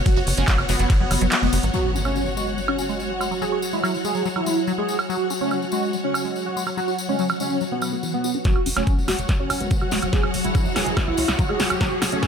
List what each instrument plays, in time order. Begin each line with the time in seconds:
Already playing: ambient pad B3, string section F#4 C#5 F#5
0.06 acid bass F#3, analog synth lead F#4, kick, closed hi-hat, ride, tambourine
0.16 analog synth bass F#1, acid bass F#4, tambourine
0.27 analog synth bass F#1, open hi-hat, tambourine
0.37 analog synth bass F#1, acid bass G#3, analog synth lead C#4, closed hi-hat, tambourine
0.47 acid bass F#3, kick, clap, closed hi-hat, ride, tambourine
0.58 analog synth bass F#1, acid bass E3, tambourine, high woodblock
0.69 analog synth bass F#1, acid bass G#3, analog synth lead B3, open hi-hat, tambourine
0.79 analog synth bass F#1, acid bass F#3, closed hi-hat, tambourine
0.90 acid bass F#3, kick, clap, closed hi-hat, ride, tambourine
1.00 analog synth bass F#1, acid bass F#3, analog synth lead B3
1.11 analog synth bass F#1, acid bass F#3, open hi-hat, tambourine, high woodblock
1.21 analog synth bass F#1, acid bass F#3, closed hi-hat
1.32 acid bass F#3, clap, closed hi-hat, ride, tambourine
1.42 analog synth bass F#1, acid bass G#3, analog synth lead B3, tambourine
1.53 analog synth bass F#1, acid bass F#3, open hi-hat, tambourine
1.63 analog synth bass G#1, acid bass F#3, closed hi-hat, tambourine
1.74 ambient pad F#3 F#4, acid bass F#3, analog synth lead F#4, tambourine, impact
1.95 acid bass C#4, tambourine
2.05 acid bass A3, analog synth lead C#4, tambourine, high woodblock
2.16 acid bass F#3, tambourine
2.26 acid bass E3, tambourine
2.37 acid bass G#3, analog synth lead F#4, tambourine
2.47 tambourine
2.58 acid bass F#3, tambourine
2.68 analog synth lead C#4, high woodblock
2.78 acid bass C#4, tambourine
2.89 acid bass G#3, tambourine
3.00 tambourine
3.10 acid bass E3, analog synth lead F#4
3.21 acid bass G#3, tambourine, high woodblock
3.31 acid bass F#3, tambourine
3.42 acid bass F#3, analog synth lead G#4, tambourine
3.52 acid bass F#4
3.62 tambourine
3.73 acid bass G#3, analog synth lead E4, tambourine
3.84 acid bass F#3, tambourine, high woodblock
3.94 acid bass E3, tambourine
4.05 acid bass G#3, analog synth lead G#4, tambourine
4.15 acid bass F#3, tambourine
4.25 acid bass F#3, tambourine
4.36 acid bass F#3, analog synth lead E4, high woodblock
4.46 acid bass G#3, tambourine
4.57 tambourine
4.67 acid bass F#3, tambourine
4.78 acid bass G#3, analog synth lead G#4
4.89 tambourine
4.99 tambourine, high woodblock
5.09 acid bass F#3, analog synth lead F#4, tambourine
5.30 acid bass C#4, tambourine
5.41 acid bass A3, analog synth lead C#4, tambourine
5.51 acid bass F#3, tambourine, high woodblock
5.62 acid bass E3, tambourine
5.72 acid bass G#3, analog synth lead F#4, tambourine
5.83 tambourine
5.93 acid bass F#3, tambourine
6.04 analog synth lead C#4
6.14 acid bass C#4, tambourine, high woodblock
6.25 acid bass G#3, tambourine
6.36 tambourine
6.46 acid bass E3, analog synth lead F#4
6.56 acid bass G#3, tambourine
6.66 acid bass F#3, tambourine, high woodblock
6.77 acid bass F#3, analog synth lead F#4, tambourine
6.88 acid bass F#4, tambourine
6.98 tambourine
7.09 acid bass G#3, analog synth lead C#4, tambourine
7.19 acid bass F#3, tambourine
7.29 acid bass E3, tambourine, high woodblock
7.40 acid bass G#3, analog synth lead C#4, tambourine
7.50 acid bass F#3, tambourine
7.61 acid bass F#3, tambourine
7.72 acid bass F#3, analog synth lead B3
7.82 acid bass F#3, tambourine, high woodblock
7.92 acid bass A3, tambourine
8.03 acid bass E3, tambourine
8.14 acid bass A3, analog synth lead B3
8.24 acid bass F#4, tambourine
8.34 acid bass C#4, tambourine
8.44 ambient pad F#3 F#4, acid bass F#3, string section F#4, analog synth lead F#4, kick, snare, closed hi-hat, tambourine, riser
8.56 analog synth bass F#1, high woodblock
8.66 analog synth bass F#1, acid bass C#4, open hi-hat, tambourine
8.77 analog synth bass F#1, acid bass A3, analog synth lead C#4, snare, closed hi-hat, high woodblock
8.84 acid bass F#3, string section C#5, kick, closed hi-hat, tambourine
8.98 analog synth bass F#1, acid bass E3, tambourine
9.06 analog synth bass F#1, acid bass G#3, analog synth lead F#4, string section F#5, snare, open hi-hat, tambourine, high woodblock
9.19 analog synth bass F#1, closed hi-hat, tambourine
9.28 kick, snare, closed hi-hat, tambourine, high woodblock
9.39 analog synth bass F#1, analog synth lead C#4
9.50 analog synth bass F#1, acid bass C#4, open hi-hat, tambourine, high woodblock
9.60 analog synth bass F#1, acid bass G#3, wobble bass B3, closed hi-hat, tambourine
9.71 wobble bass B3, kick, closed hi-hat, tambourine
9.81 analog synth bass F#1, acid bass E3, wobble bass F#3, analog synth lead F#4, high woodblock
9.91 analog synth bass F#1, acid bass G#3, snare, open hi-hat, tambourine
10.02 analog synth bass F#1, acid bass F#3, closed hi-hat, tambourine, high woodblock
10.13 acid bass F#3, analog synth lead G#4, kick, snare, closed hi-hat, tambourine
10.23 analog synth bass F#1, acid bass F#4, high woodblock
10.34 analog synth bass F#1, open hi-hat, tambourine
10.44 analog synth bass F#1, acid bass G#3, analog synth lead E4, closed hi-hat, tambourine
10.55 acid bass F#3, kick, closed hi-hat, tambourine, high woodblock
10.65 analog synth bass F#1, acid bass E3, tambourine
10.76 analog synth bass F#1, wobble bass E3, acid bass G#3, analog synth lead G#4, snare, open hi-hat, tambourine, high woodblock
10.86 analog synth bass F#1, wobble bass E3, acid bass F#3, closed hi-hat, tambourine
10.97 wobble bass E3, acid bass F#3, kick, snare, closed hi-hat, tambourine, high woodblock
11.07 analog synth bass C#2, wobble bass E3, acid bass F#3, analog synth lead E4
11.17 analog synth bass C#2, acid bass G#3, open hi-hat, tambourine
11.28 analog synth bass C#2, snare, closed hi-hat, tambourine, high woodblock
11.39 acid bass F#3, kick, closed hi-hat, tambourine
11.49 analog synth bass F#1, acid bass G#3, analog synth lead G#4, high woodblock
11.60 analog synth bass F#1, snare, open hi-hat, tambourine
11.70 analog synth bass F#1, closed hi-hat, tambourine, high woodblock
11.81 acid bass F#3, analog synth lead F#4, kick, snare, closed hi-hat, tambourine
11.91 analog synth bass F#1
12.02 analog synth bass F#1, acid bass C#4, snare, open hi-hat, tambourine, high woodblock
12.12 analog synth bass F#1, acid bass A3, analog synth lead C#4, closed hi-hat, tambourine
12.23 acid bass F#3, kick, snare, closed hi-hat, tambourine, high woodblock